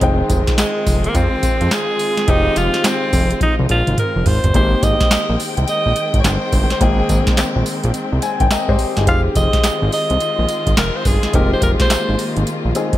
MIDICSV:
0, 0, Header, 1, 6, 480
1, 0, Start_track
1, 0, Key_signature, -4, "major"
1, 0, Tempo, 566038
1, 13, Time_signature, 4, 2, 24, 8
1, 11005, End_track
2, 0, Start_track
2, 0, Title_t, "Alto saxophone"
2, 0, Program_c, 0, 65
2, 503, Note_on_c, 0, 56, 102
2, 863, Note_off_c, 0, 56, 0
2, 899, Note_on_c, 0, 58, 92
2, 985, Note_on_c, 0, 60, 107
2, 998, Note_off_c, 0, 58, 0
2, 1467, Note_on_c, 0, 68, 111
2, 1479, Note_off_c, 0, 60, 0
2, 1947, Note_on_c, 0, 63, 121
2, 1959, Note_off_c, 0, 68, 0
2, 2187, Note_on_c, 0, 65, 111
2, 2199, Note_off_c, 0, 63, 0
2, 2427, Note_on_c, 0, 60, 103
2, 2440, Note_off_c, 0, 65, 0
2, 2900, Note_off_c, 0, 60, 0
2, 2906, Note_on_c, 0, 63, 99
2, 3011, Note_off_c, 0, 63, 0
2, 3148, Note_on_c, 0, 65, 98
2, 3364, Note_off_c, 0, 65, 0
2, 3383, Note_on_c, 0, 70, 88
2, 3621, Note_on_c, 0, 72, 97
2, 3634, Note_off_c, 0, 70, 0
2, 3857, Note_off_c, 0, 72, 0
2, 3861, Note_on_c, 0, 72, 109
2, 4100, Note_on_c, 0, 75, 120
2, 4113, Note_off_c, 0, 72, 0
2, 4576, Note_off_c, 0, 75, 0
2, 4825, Note_on_c, 0, 75, 123
2, 5258, Note_on_c, 0, 73, 73
2, 5271, Note_off_c, 0, 75, 0
2, 5304, Note_on_c, 0, 72, 98
2, 5317, Note_off_c, 0, 73, 0
2, 5691, Note_off_c, 0, 72, 0
2, 5695, Note_on_c, 0, 72, 92
2, 5785, Note_on_c, 0, 68, 95
2, 5798, Note_off_c, 0, 72, 0
2, 6259, Note_off_c, 0, 68, 0
2, 7704, Note_on_c, 0, 77, 120
2, 7809, Note_off_c, 0, 77, 0
2, 7943, Note_on_c, 0, 75, 125
2, 8385, Note_off_c, 0, 75, 0
2, 8423, Note_on_c, 0, 75, 109
2, 9104, Note_off_c, 0, 75, 0
2, 9144, Note_on_c, 0, 70, 97
2, 9296, Note_on_c, 0, 72, 97
2, 9309, Note_off_c, 0, 70, 0
2, 9386, Note_on_c, 0, 68, 91
2, 9399, Note_off_c, 0, 72, 0
2, 9625, Note_on_c, 0, 70, 100
2, 9637, Note_off_c, 0, 68, 0
2, 9771, Note_off_c, 0, 70, 0
2, 9779, Note_on_c, 0, 72, 85
2, 9854, Note_off_c, 0, 72, 0
2, 9865, Note_on_c, 0, 70, 91
2, 9931, Note_off_c, 0, 70, 0
2, 10019, Note_on_c, 0, 72, 91
2, 10459, Note_off_c, 0, 72, 0
2, 11005, End_track
3, 0, Start_track
3, 0, Title_t, "Grand piano"
3, 0, Program_c, 1, 0
3, 0, Control_c, 1, 64, 127
3, 8, Note_on_c, 1, 56, 86
3, 16, Note_on_c, 1, 60, 70
3, 22, Note_on_c, 1, 63, 75
3, 25, Control_c, 1, 64, 0
3, 30, Note_on_c, 1, 79, 89
3, 183, Control_c, 1, 64, 127
3, 1897, Note_off_c, 1, 56, 0
3, 1900, Note_off_c, 1, 60, 0
3, 1903, Note_off_c, 1, 63, 0
3, 1907, Note_off_c, 1, 79, 0
3, 1928, Note_on_c, 1, 56, 69
3, 1935, Note_on_c, 1, 60, 65
3, 1942, Note_on_c, 1, 63, 62
3, 1949, Note_on_c, 1, 67, 80
3, 3816, Note_off_c, 1, 56, 0
3, 3820, Note_off_c, 1, 60, 0
3, 3823, Note_off_c, 1, 63, 0
3, 3827, Note_off_c, 1, 67, 0
3, 3848, Note_on_c, 1, 58, 66
3, 3853, Note_on_c, 1, 60, 61
3, 3861, Note_on_c, 1, 63, 62
3, 3863, Control_c, 1, 64, 0
3, 3868, Note_on_c, 1, 67, 72
3, 4034, Control_c, 1, 64, 127
3, 5736, Note_off_c, 1, 58, 0
3, 5739, Note_off_c, 1, 60, 0
3, 5743, Note_off_c, 1, 63, 0
3, 5746, Note_off_c, 1, 67, 0
3, 5767, Note_on_c, 1, 58, 69
3, 5773, Note_on_c, 1, 60, 65
3, 5780, Note_on_c, 1, 63, 64
3, 5787, Note_on_c, 1, 79, 81
3, 6977, Note_on_c, 1, 80, 73
3, 7116, Note_off_c, 1, 79, 0
3, 7117, Note_off_c, 1, 80, 0
3, 7129, Note_on_c, 1, 79, 79
3, 7187, Note_off_c, 1, 63, 0
3, 7209, Note_off_c, 1, 79, 0
3, 7216, Note_on_c, 1, 75, 77
3, 7222, Note_on_c, 1, 70, 60
3, 7362, Note_off_c, 1, 70, 0
3, 7368, Note_on_c, 1, 72, 77
3, 7373, Note_on_c, 1, 67, 66
3, 7594, Note_off_c, 1, 72, 0
3, 7597, Note_off_c, 1, 67, 0
3, 7608, Note_on_c, 1, 68, 63
3, 7614, Note_on_c, 1, 63, 54
3, 7656, Note_off_c, 1, 58, 0
3, 7659, Note_off_c, 1, 60, 0
3, 7661, Note_off_c, 1, 75, 0
3, 7688, Note_on_c, 1, 56, 73
3, 7689, Note_off_c, 1, 63, 0
3, 7694, Note_on_c, 1, 60, 59
3, 7701, Note_on_c, 1, 63, 60
3, 7702, Control_c, 1, 64, 0
3, 7708, Note_on_c, 1, 67, 75
3, 7835, Note_off_c, 1, 68, 0
3, 7838, Control_c, 1, 64, 127
3, 9576, Note_off_c, 1, 56, 0
3, 9580, Note_off_c, 1, 60, 0
3, 9583, Note_off_c, 1, 63, 0
3, 9586, Note_off_c, 1, 67, 0
3, 9606, Note_on_c, 1, 56, 70
3, 9613, Note_on_c, 1, 60, 61
3, 9619, Note_on_c, 1, 63, 59
3, 9627, Note_on_c, 1, 67, 79
3, 10785, Note_off_c, 1, 56, 0
3, 10789, Note_off_c, 1, 60, 0
3, 10792, Note_off_c, 1, 63, 0
3, 10796, Note_off_c, 1, 67, 0
3, 10813, Note_on_c, 1, 56, 61
3, 10815, Note_on_c, 1, 60, 56
3, 10819, Note_on_c, 1, 63, 54
3, 10822, Note_on_c, 1, 68, 69
3, 11005, Note_off_c, 1, 56, 0
3, 11005, Note_off_c, 1, 60, 0
3, 11005, Note_off_c, 1, 63, 0
3, 11005, Note_off_c, 1, 68, 0
3, 11005, End_track
4, 0, Start_track
4, 0, Title_t, "String section"
4, 0, Program_c, 2, 48
4, 0, Note_on_c, 2, 51, 78
4, 0, Note_on_c, 2, 60, 72
4, 12, Note_on_c, 2, 56, 75
4, 14, Note_on_c, 2, 65, 89
4, 3818, Note_off_c, 2, 51, 0
4, 3818, Note_off_c, 2, 56, 0
4, 3819, Note_off_c, 2, 60, 0
4, 3819, Note_off_c, 2, 65, 0
4, 3851, Note_on_c, 2, 51, 85
4, 3851, Note_on_c, 2, 56, 79
4, 3852, Note_on_c, 2, 60, 76
4, 3852, Note_on_c, 2, 79, 84
4, 7658, Note_off_c, 2, 51, 0
4, 7658, Note_off_c, 2, 56, 0
4, 7658, Note_off_c, 2, 79, 0
4, 7692, Note_on_c, 2, 51, 82
4, 7692, Note_on_c, 2, 65, 90
4, 7693, Note_on_c, 2, 56, 73
4, 9578, Note_off_c, 2, 60, 0
4, 9615, Note_on_c, 2, 58, 75
4, 11005, Note_off_c, 2, 51, 0
4, 11005, Note_off_c, 2, 56, 0
4, 11005, Note_off_c, 2, 58, 0
4, 11005, Note_off_c, 2, 65, 0
4, 11005, End_track
5, 0, Start_track
5, 0, Title_t, "Analog synth bass"
5, 0, Program_c, 3, 38
5, 14, Note_on_c, 3, 29, 113
5, 188, Note_off_c, 3, 29, 0
5, 254, Note_on_c, 3, 29, 110
5, 364, Note_off_c, 3, 29, 0
5, 736, Note_on_c, 3, 29, 97
5, 909, Note_off_c, 3, 29, 0
5, 974, Note_on_c, 3, 41, 109
5, 1084, Note_off_c, 3, 41, 0
5, 1214, Note_on_c, 3, 41, 45
5, 1275, Note_off_c, 3, 41, 0
5, 1369, Note_on_c, 3, 41, 88
5, 1431, Note_off_c, 3, 41, 0
5, 1935, Note_on_c, 3, 29, 123
5, 2109, Note_off_c, 3, 29, 0
5, 2177, Note_on_c, 3, 29, 104
5, 2286, Note_off_c, 3, 29, 0
5, 2655, Note_on_c, 3, 29, 92
5, 2829, Note_off_c, 3, 29, 0
5, 3049, Note_on_c, 3, 36, 92
5, 3111, Note_off_c, 3, 36, 0
5, 3136, Note_on_c, 3, 34, 92
5, 3246, Note_off_c, 3, 34, 0
5, 3289, Note_on_c, 3, 32, 83
5, 3351, Note_off_c, 3, 32, 0
5, 3529, Note_on_c, 3, 29, 88
5, 3591, Note_off_c, 3, 29, 0
5, 3617, Note_on_c, 3, 32, 99
5, 3726, Note_off_c, 3, 32, 0
5, 3769, Note_on_c, 3, 31, 88
5, 3832, Note_off_c, 3, 31, 0
5, 3855, Note_on_c, 3, 32, 116
5, 4029, Note_off_c, 3, 32, 0
5, 4095, Note_on_c, 3, 32, 104
5, 4205, Note_off_c, 3, 32, 0
5, 4489, Note_on_c, 3, 34, 90
5, 4551, Note_off_c, 3, 34, 0
5, 4729, Note_on_c, 3, 36, 91
5, 4791, Note_off_c, 3, 36, 0
5, 4970, Note_on_c, 3, 34, 87
5, 5032, Note_off_c, 3, 34, 0
5, 5208, Note_on_c, 3, 32, 85
5, 5271, Note_off_c, 3, 32, 0
5, 5297, Note_on_c, 3, 31, 108
5, 5406, Note_off_c, 3, 31, 0
5, 5535, Note_on_c, 3, 31, 98
5, 5645, Note_off_c, 3, 31, 0
5, 5775, Note_on_c, 3, 32, 103
5, 5948, Note_off_c, 3, 32, 0
5, 6016, Note_on_c, 3, 32, 108
5, 6125, Note_off_c, 3, 32, 0
5, 6410, Note_on_c, 3, 34, 98
5, 6472, Note_off_c, 3, 34, 0
5, 6650, Note_on_c, 3, 34, 104
5, 6712, Note_off_c, 3, 34, 0
5, 6890, Note_on_c, 3, 36, 90
5, 6952, Note_off_c, 3, 36, 0
5, 7126, Note_on_c, 3, 32, 86
5, 7189, Note_off_c, 3, 32, 0
5, 7366, Note_on_c, 3, 44, 98
5, 7430, Note_off_c, 3, 44, 0
5, 7609, Note_on_c, 3, 31, 94
5, 7695, Note_on_c, 3, 29, 112
5, 7707, Note_off_c, 3, 31, 0
5, 7869, Note_off_c, 3, 29, 0
5, 7934, Note_on_c, 3, 29, 99
5, 8044, Note_off_c, 3, 29, 0
5, 8330, Note_on_c, 3, 32, 96
5, 8392, Note_off_c, 3, 32, 0
5, 8570, Note_on_c, 3, 36, 85
5, 8632, Note_off_c, 3, 36, 0
5, 8809, Note_on_c, 3, 34, 90
5, 8872, Note_off_c, 3, 34, 0
5, 9047, Note_on_c, 3, 32, 92
5, 9110, Note_off_c, 3, 32, 0
5, 9138, Note_on_c, 3, 29, 109
5, 9247, Note_off_c, 3, 29, 0
5, 9375, Note_on_c, 3, 31, 94
5, 9485, Note_off_c, 3, 31, 0
5, 9616, Note_on_c, 3, 29, 105
5, 9789, Note_off_c, 3, 29, 0
5, 9855, Note_on_c, 3, 29, 104
5, 9965, Note_off_c, 3, 29, 0
5, 10251, Note_on_c, 3, 32, 80
5, 10313, Note_off_c, 3, 32, 0
5, 10489, Note_on_c, 3, 32, 91
5, 10551, Note_off_c, 3, 32, 0
5, 10729, Note_on_c, 3, 34, 91
5, 10791, Note_off_c, 3, 34, 0
5, 10967, Note_on_c, 3, 29, 89
5, 11005, Note_off_c, 3, 29, 0
5, 11005, End_track
6, 0, Start_track
6, 0, Title_t, "Drums"
6, 12, Note_on_c, 9, 36, 115
6, 12, Note_on_c, 9, 42, 79
6, 97, Note_off_c, 9, 36, 0
6, 97, Note_off_c, 9, 42, 0
6, 251, Note_on_c, 9, 42, 73
6, 252, Note_on_c, 9, 36, 87
6, 252, Note_on_c, 9, 54, 65
6, 336, Note_off_c, 9, 36, 0
6, 336, Note_off_c, 9, 42, 0
6, 337, Note_off_c, 9, 54, 0
6, 402, Note_on_c, 9, 38, 65
6, 404, Note_on_c, 9, 42, 58
6, 406, Note_on_c, 9, 36, 94
6, 487, Note_off_c, 9, 38, 0
6, 489, Note_off_c, 9, 42, 0
6, 490, Note_off_c, 9, 36, 0
6, 491, Note_on_c, 9, 38, 104
6, 492, Note_on_c, 9, 54, 94
6, 493, Note_on_c, 9, 42, 78
6, 497, Note_on_c, 9, 39, 84
6, 576, Note_off_c, 9, 38, 0
6, 577, Note_off_c, 9, 54, 0
6, 578, Note_off_c, 9, 42, 0
6, 581, Note_off_c, 9, 39, 0
6, 733, Note_on_c, 9, 36, 94
6, 734, Note_on_c, 9, 46, 75
6, 734, Note_on_c, 9, 54, 69
6, 818, Note_off_c, 9, 36, 0
6, 819, Note_off_c, 9, 46, 0
6, 819, Note_off_c, 9, 54, 0
6, 884, Note_on_c, 9, 42, 58
6, 969, Note_off_c, 9, 42, 0
6, 971, Note_on_c, 9, 36, 86
6, 972, Note_on_c, 9, 54, 70
6, 973, Note_on_c, 9, 42, 59
6, 1056, Note_off_c, 9, 36, 0
6, 1057, Note_off_c, 9, 42, 0
6, 1057, Note_off_c, 9, 54, 0
6, 1211, Note_on_c, 9, 42, 74
6, 1211, Note_on_c, 9, 54, 63
6, 1212, Note_on_c, 9, 36, 82
6, 1296, Note_off_c, 9, 42, 0
6, 1296, Note_off_c, 9, 54, 0
6, 1297, Note_off_c, 9, 36, 0
6, 1364, Note_on_c, 9, 42, 49
6, 1449, Note_off_c, 9, 42, 0
6, 1452, Note_on_c, 9, 38, 119
6, 1454, Note_on_c, 9, 42, 68
6, 1454, Note_on_c, 9, 54, 101
6, 1458, Note_on_c, 9, 39, 96
6, 1537, Note_off_c, 9, 38, 0
6, 1538, Note_off_c, 9, 42, 0
6, 1538, Note_off_c, 9, 54, 0
6, 1543, Note_off_c, 9, 39, 0
6, 1690, Note_on_c, 9, 54, 78
6, 1691, Note_on_c, 9, 46, 86
6, 1775, Note_off_c, 9, 54, 0
6, 1776, Note_off_c, 9, 46, 0
6, 1844, Note_on_c, 9, 38, 72
6, 1844, Note_on_c, 9, 42, 56
6, 1929, Note_off_c, 9, 38, 0
6, 1929, Note_off_c, 9, 42, 0
6, 1931, Note_on_c, 9, 42, 85
6, 1932, Note_on_c, 9, 36, 112
6, 2016, Note_off_c, 9, 42, 0
6, 2017, Note_off_c, 9, 36, 0
6, 2172, Note_on_c, 9, 42, 69
6, 2173, Note_on_c, 9, 54, 68
6, 2256, Note_off_c, 9, 42, 0
6, 2257, Note_off_c, 9, 54, 0
6, 2322, Note_on_c, 9, 38, 73
6, 2324, Note_on_c, 9, 42, 54
6, 2407, Note_off_c, 9, 38, 0
6, 2408, Note_off_c, 9, 42, 0
6, 2410, Note_on_c, 9, 38, 110
6, 2412, Note_on_c, 9, 42, 85
6, 2412, Note_on_c, 9, 54, 98
6, 2416, Note_on_c, 9, 39, 86
6, 2495, Note_off_c, 9, 38, 0
6, 2496, Note_off_c, 9, 54, 0
6, 2497, Note_off_c, 9, 42, 0
6, 2501, Note_off_c, 9, 39, 0
6, 2652, Note_on_c, 9, 36, 97
6, 2653, Note_on_c, 9, 46, 76
6, 2653, Note_on_c, 9, 54, 74
6, 2737, Note_off_c, 9, 36, 0
6, 2738, Note_off_c, 9, 46, 0
6, 2738, Note_off_c, 9, 54, 0
6, 2803, Note_on_c, 9, 42, 56
6, 2888, Note_off_c, 9, 42, 0
6, 2890, Note_on_c, 9, 36, 96
6, 2891, Note_on_c, 9, 48, 59
6, 2892, Note_on_c, 9, 42, 65
6, 2975, Note_off_c, 9, 36, 0
6, 2976, Note_off_c, 9, 42, 0
6, 2976, Note_off_c, 9, 48, 0
6, 3044, Note_on_c, 9, 48, 56
6, 3129, Note_off_c, 9, 48, 0
6, 3130, Note_on_c, 9, 42, 77
6, 3215, Note_off_c, 9, 42, 0
6, 3284, Note_on_c, 9, 42, 51
6, 3284, Note_on_c, 9, 47, 72
6, 3369, Note_off_c, 9, 42, 0
6, 3369, Note_off_c, 9, 47, 0
6, 3371, Note_on_c, 9, 45, 91
6, 3374, Note_on_c, 9, 42, 76
6, 3456, Note_off_c, 9, 45, 0
6, 3459, Note_off_c, 9, 42, 0
6, 3611, Note_on_c, 9, 43, 106
6, 3611, Note_on_c, 9, 46, 88
6, 3696, Note_off_c, 9, 43, 0
6, 3696, Note_off_c, 9, 46, 0
6, 3764, Note_on_c, 9, 42, 56
6, 3764, Note_on_c, 9, 43, 105
6, 3849, Note_off_c, 9, 42, 0
6, 3849, Note_off_c, 9, 43, 0
6, 3852, Note_on_c, 9, 36, 115
6, 3853, Note_on_c, 9, 42, 79
6, 3937, Note_off_c, 9, 36, 0
6, 3938, Note_off_c, 9, 42, 0
6, 4092, Note_on_c, 9, 36, 82
6, 4093, Note_on_c, 9, 42, 73
6, 4094, Note_on_c, 9, 54, 70
6, 4177, Note_off_c, 9, 36, 0
6, 4178, Note_off_c, 9, 42, 0
6, 4179, Note_off_c, 9, 54, 0
6, 4244, Note_on_c, 9, 38, 74
6, 4246, Note_on_c, 9, 36, 97
6, 4246, Note_on_c, 9, 42, 58
6, 4329, Note_off_c, 9, 38, 0
6, 4331, Note_off_c, 9, 36, 0
6, 4331, Note_off_c, 9, 42, 0
6, 4333, Note_on_c, 9, 38, 103
6, 4334, Note_on_c, 9, 54, 100
6, 4335, Note_on_c, 9, 42, 85
6, 4338, Note_on_c, 9, 39, 86
6, 4417, Note_off_c, 9, 38, 0
6, 4419, Note_off_c, 9, 54, 0
6, 4420, Note_off_c, 9, 42, 0
6, 4423, Note_off_c, 9, 39, 0
6, 4577, Note_on_c, 9, 46, 79
6, 4577, Note_on_c, 9, 54, 71
6, 4662, Note_off_c, 9, 46, 0
6, 4662, Note_off_c, 9, 54, 0
6, 4726, Note_on_c, 9, 42, 57
6, 4811, Note_off_c, 9, 42, 0
6, 4813, Note_on_c, 9, 54, 61
6, 4814, Note_on_c, 9, 42, 65
6, 4898, Note_off_c, 9, 42, 0
6, 4898, Note_off_c, 9, 54, 0
6, 5052, Note_on_c, 9, 54, 63
6, 5053, Note_on_c, 9, 42, 76
6, 5137, Note_off_c, 9, 42, 0
6, 5137, Note_off_c, 9, 54, 0
6, 5205, Note_on_c, 9, 36, 93
6, 5206, Note_on_c, 9, 42, 55
6, 5290, Note_off_c, 9, 36, 0
6, 5291, Note_off_c, 9, 42, 0
6, 5295, Note_on_c, 9, 38, 126
6, 5296, Note_on_c, 9, 42, 80
6, 5296, Note_on_c, 9, 54, 94
6, 5301, Note_on_c, 9, 39, 105
6, 5380, Note_off_c, 9, 38, 0
6, 5381, Note_off_c, 9, 42, 0
6, 5381, Note_off_c, 9, 54, 0
6, 5385, Note_off_c, 9, 39, 0
6, 5532, Note_on_c, 9, 54, 72
6, 5533, Note_on_c, 9, 36, 104
6, 5533, Note_on_c, 9, 46, 81
6, 5617, Note_off_c, 9, 36, 0
6, 5617, Note_off_c, 9, 54, 0
6, 5618, Note_off_c, 9, 46, 0
6, 5685, Note_on_c, 9, 38, 71
6, 5685, Note_on_c, 9, 42, 57
6, 5770, Note_off_c, 9, 38, 0
6, 5770, Note_off_c, 9, 42, 0
6, 5773, Note_on_c, 9, 36, 123
6, 5773, Note_on_c, 9, 42, 81
6, 5858, Note_off_c, 9, 36, 0
6, 5858, Note_off_c, 9, 42, 0
6, 6013, Note_on_c, 9, 36, 84
6, 6014, Note_on_c, 9, 42, 71
6, 6015, Note_on_c, 9, 54, 71
6, 6097, Note_off_c, 9, 36, 0
6, 6099, Note_off_c, 9, 42, 0
6, 6100, Note_off_c, 9, 54, 0
6, 6164, Note_on_c, 9, 38, 72
6, 6166, Note_on_c, 9, 42, 53
6, 6167, Note_on_c, 9, 36, 92
6, 6249, Note_off_c, 9, 38, 0
6, 6250, Note_off_c, 9, 42, 0
6, 6251, Note_off_c, 9, 36, 0
6, 6252, Note_on_c, 9, 38, 112
6, 6254, Note_on_c, 9, 54, 90
6, 6255, Note_on_c, 9, 42, 84
6, 6258, Note_on_c, 9, 39, 90
6, 6337, Note_off_c, 9, 38, 0
6, 6339, Note_off_c, 9, 42, 0
6, 6339, Note_off_c, 9, 54, 0
6, 6343, Note_off_c, 9, 39, 0
6, 6495, Note_on_c, 9, 46, 76
6, 6495, Note_on_c, 9, 54, 75
6, 6580, Note_off_c, 9, 46, 0
6, 6580, Note_off_c, 9, 54, 0
6, 6645, Note_on_c, 9, 42, 60
6, 6729, Note_off_c, 9, 42, 0
6, 6732, Note_on_c, 9, 42, 65
6, 6732, Note_on_c, 9, 54, 69
6, 6816, Note_off_c, 9, 54, 0
6, 6817, Note_off_c, 9, 42, 0
6, 6971, Note_on_c, 9, 42, 75
6, 6971, Note_on_c, 9, 54, 59
6, 7056, Note_off_c, 9, 42, 0
6, 7056, Note_off_c, 9, 54, 0
6, 7124, Note_on_c, 9, 36, 94
6, 7125, Note_on_c, 9, 42, 54
6, 7209, Note_off_c, 9, 36, 0
6, 7209, Note_off_c, 9, 42, 0
6, 7213, Note_on_c, 9, 38, 118
6, 7215, Note_on_c, 9, 42, 73
6, 7215, Note_on_c, 9, 54, 99
6, 7219, Note_on_c, 9, 39, 94
6, 7298, Note_off_c, 9, 38, 0
6, 7299, Note_off_c, 9, 42, 0
6, 7299, Note_off_c, 9, 54, 0
6, 7304, Note_off_c, 9, 39, 0
6, 7364, Note_on_c, 9, 36, 104
6, 7449, Note_off_c, 9, 36, 0
6, 7451, Note_on_c, 9, 54, 71
6, 7452, Note_on_c, 9, 46, 79
6, 7535, Note_off_c, 9, 54, 0
6, 7537, Note_off_c, 9, 46, 0
6, 7604, Note_on_c, 9, 38, 72
6, 7604, Note_on_c, 9, 42, 60
6, 7689, Note_off_c, 9, 38, 0
6, 7689, Note_off_c, 9, 42, 0
6, 7692, Note_on_c, 9, 36, 114
6, 7692, Note_on_c, 9, 42, 86
6, 7777, Note_off_c, 9, 36, 0
6, 7777, Note_off_c, 9, 42, 0
6, 7932, Note_on_c, 9, 36, 89
6, 7933, Note_on_c, 9, 42, 77
6, 7934, Note_on_c, 9, 54, 71
6, 8017, Note_off_c, 9, 36, 0
6, 8018, Note_off_c, 9, 42, 0
6, 8019, Note_off_c, 9, 54, 0
6, 8084, Note_on_c, 9, 38, 73
6, 8086, Note_on_c, 9, 36, 98
6, 8086, Note_on_c, 9, 42, 60
6, 8169, Note_off_c, 9, 38, 0
6, 8170, Note_off_c, 9, 42, 0
6, 8171, Note_off_c, 9, 36, 0
6, 8171, Note_on_c, 9, 38, 112
6, 8173, Note_on_c, 9, 54, 101
6, 8174, Note_on_c, 9, 42, 88
6, 8177, Note_on_c, 9, 39, 82
6, 8256, Note_off_c, 9, 38, 0
6, 8258, Note_off_c, 9, 42, 0
6, 8258, Note_off_c, 9, 54, 0
6, 8262, Note_off_c, 9, 39, 0
6, 8416, Note_on_c, 9, 46, 79
6, 8416, Note_on_c, 9, 54, 69
6, 8501, Note_off_c, 9, 46, 0
6, 8501, Note_off_c, 9, 54, 0
6, 8565, Note_on_c, 9, 42, 56
6, 8649, Note_off_c, 9, 42, 0
6, 8653, Note_on_c, 9, 42, 63
6, 8653, Note_on_c, 9, 54, 65
6, 8738, Note_off_c, 9, 42, 0
6, 8738, Note_off_c, 9, 54, 0
6, 8891, Note_on_c, 9, 54, 61
6, 8892, Note_on_c, 9, 42, 75
6, 8976, Note_off_c, 9, 42, 0
6, 8976, Note_off_c, 9, 54, 0
6, 9045, Note_on_c, 9, 36, 82
6, 9046, Note_on_c, 9, 42, 57
6, 9129, Note_off_c, 9, 36, 0
6, 9131, Note_off_c, 9, 42, 0
6, 9134, Note_on_c, 9, 38, 120
6, 9136, Note_on_c, 9, 42, 77
6, 9136, Note_on_c, 9, 54, 91
6, 9140, Note_on_c, 9, 39, 98
6, 9219, Note_off_c, 9, 38, 0
6, 9220, Note_off_c, 9, 42, 0
6, 9220, Note_off_c, 9, 54, 0
6, 9225, Note_off_c, 9, 39, 0
6, 9371, Note_on_c, 9, 54, 78
6, 9373, Note_on_c, 9, 36, 113
6, 9373, Note_on_c, 9, 46, 88
6, 9456, Note_off_c, 9, 54, 0
6, 9457, Note_off_c, 9, 36, 0
6, 9457, Note_off_c, 9, 46, 0
6, 9524, Note_on_c, 9, 38, 75
6, 9524, Note_on_c, 9, 42, 57
6, 9609, Note_off_c, 9, 38, 0
6, 9609, Note_off_c, 9, 42, 0
6, 9612, Note_on_c, 9, 42, 83
6, 9613, Note_on_c, 9, 36, 118
6, 9697, Note_off_c, 9, 42, 0
6, 9698, Note_off_c, 9, 36, 0
6, 9852, Note_on_c, 9, 36, 91
6, 9853, Note_on_c, 9, 42, 80
6, 9854, Note_on_c, 9, 54, 69
6, 9937, Note_off_c, 9, 36, 0
6, 9937, Note_off_c, 9, 42, 0
6, 9938, Note_off_c, 9, 54, 0
6, 10003, Note_on_c, 9, 38, 71
6, 10005, Note_on_c, 9, 42, 62
6, 10006, Note_on_c, 9, 36, 98
6, 10088, Note_off_c, 9, 38, 0
6, 10090, Note_off_c, 9, 42, 0
6, 10091, Note_off_c, 9, 36, 0
6, 10092, Note_on_c, 9, 38, 109
6, 10093, Note_on_c, 9, 54, 95
6, 10094, Note_on_c, 9, 42, 87
6, 10097, Note_on_c, 9, 39, 94
6, 10176, Note_off_c, 9, 38, 0
6, 10178, Note_off_c, 9, 54, 0
6, 10179, Note_off_c, 9, 42, 0
6, 10182, Note_off_c, 9, 39, 0
6, 10335, Note_on_c, 9, 46, 79
6, 10335, Note_on_c, 9, 54, 70
6, 10420, Note_off_c, 9, 46, 0
6, 10420, Note_off_c, 9, 54, 0
6, 10486, Note_on_c, 9, 42, 56
6, 10571, Note_off_c, 9, 42, 0
6, 10573, Note_on_c, 9, 42, 61
6, 10573, Note_on_c, 9, 54, 63
6, 10658, Note_off_c, 9, 42, 0
6, 10658, Note_off_c, 9, 54, 0
6, 10812, Note_on_c, 9, 42, 75
6, 10812, Note_on_c, 9, 54, 65
6, 10897, Note_off_c, 9, 42, 0
6, 10897, Note_off_c, 9, 54, 0
6, 10964, Note_on_c, 9, 36, 84
6, 10965, Note_on_c, 9, 42, 55
6, 11005, Note_off_c, 9, 36, 0
6, 11005, Note_off_c, 9, 42, 0
6, 11005, End_track
0, 0, End_of_file